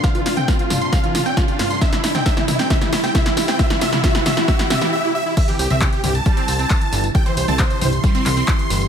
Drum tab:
CC |----------------|----------------|----------------|x---------------|
HH |xxoxxxoxxxoxxxox|xxoxxxoxxxoxxxox|xxoxxxoxxxox----|xxoxxxoxxxoxxxox|
TB |xxxxxxxxxxxxxxxx|xxxxxxxxxxxxxxxx|xxxxxxxxxxxx----|xxxxxxxxxxxxxxxx|
CP |----------------|----------------|----------------|----x-------x---|
SD |o-o-o-o-o-o-o-o-|oooooooooooooooo|oooooooooooo----|----------------|
T2 |---o--o---o-----|---o--o---------|---o--o---o-----|---o--o---------|
BD |o---o---o---o---|o---o---o---o---|o---o---o-------|o---o---o---o---|

CC |----------------|
HH |xxoxxxoxxxoxxxox|
TB |xxxxxxxxxxxxxxxx|
CP |----x-----x-x---|
SD |----------------|
T2 |---o--o---o-----|
BD |o---o---o---o---|